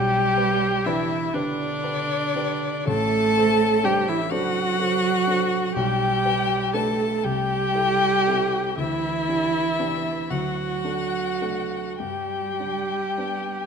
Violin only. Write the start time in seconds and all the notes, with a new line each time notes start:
Already playing: G5
0.85 E5
1.35 D5
2.88 A5
3.84 G5
4.08 E5
4.32 F#5
5.77 G5
6.75 A5
7.24 G5
8.78 E5
10.31 F#5
12.00 G5